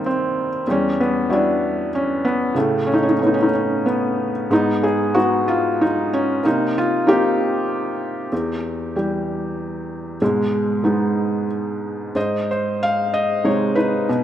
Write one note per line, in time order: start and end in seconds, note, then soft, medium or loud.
0.00 0.61 C3 medium
0.00 0.67 D#3 soft
0.00 0.67 G3 medium
0.00 0.67 A#3 medium
0.00 0.06 C4 soft
0.00 0.62 D#4 soft
0.06 0.48 C4 medium
0.67 2.52 E2 medium
0.67 1.28 G3 medium
0.67 1.00 C#4 medium
1.00 1.28 B3 medium
1.30 2.52 G3 soft
1.30 1.90 D4 medium
1.30 2.52 E4 medium
1.30 2.52 F#4 soft
1.95 2.23 C#4 medium
2.25 2.54 B3 medium
2.55 4.47 A2 medium
2.55 3.48 C#3 soft
2.55 2.86 A3 medium
2.87 2.95 C#4 medium
2.94 3.03 D#4 medium
3.03 3.11 C#4 medium
3.09 3.18 D#4 medium
3.19 4.47 A3 soft
3.19 3.84 B3 soft
3.19 3.21 C#4 medium
3.19 3.32 C#4 soft
3.27 3.35 D#4 medium
3.34 3.43 C#4 medium
3.43 3.51 D#4 medium
3.53 3.83 C#4 medium
3.86 4.31 B3 medium
4.50 6.39 G#2 medium
4.50 5.14 B3 medium
4.50 4.85 D#4 medium
4.83 5.16 G#4 medium
5.14 6.39 G#3 soft
5.14 6.40 B3 soft
5.14 5.80 D#4 soft
5.14 5.45 F#4 medium
5.48 5.81 F4 medium
5.81 6.10 D#4 medium
6.13 6.45 C#4 medium
6.43 8.29 C3 medium
6.43 7.06 A#3 medium
6.43 6.77 D#4 medium
6.78 7.09 F4 medium
7.07 8.28 A#3 soft
7.07 8.28 C4 soft
7.07 10.17 D#4 medium
7.07 8.95 G4 medium
8.32 10.17 E2 medium
8.96 10.17 E3 soft
8.96 10.18 G3 soft
8.96 10.18 G4 soft
10.22 12.12 G#2 medium
10.22 11.46 B2 soft
10.22 10.82 G#3 medium
10.84 12.11 G#3 soft
10.84 12.12 B3 soft
10.84 12.12 D#4 soft
12.15 14.04 G#2 soft
12.15 12.49 C5 soft
12.15 12.46 D#5 medium
12.51 12.82 C5 medium
12.83 13.11 F5 medium
13.14 13.46 D#5 medium
13.44 14.06 C3 soft
13.44 14.06 G#3 soft
13.44 13.76 D#4 soft
13.44 13.75 C#5 medium
13.75 14.24 D#4 soft
13.75 14.24 B4 medium
14.09 14.24 B2 medium